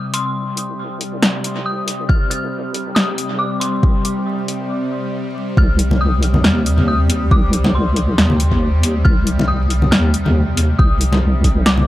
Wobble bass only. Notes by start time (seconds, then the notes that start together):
Already playing: A#1
0.35 C2
1.22 C2
2.09 C2
2.96 A#1
3.83 C2
5.57 C2
6.44 D#2
7.31 C2
8.18 D#2
9.05 C2
9.92 D#2
10.79 C2
11.66 C2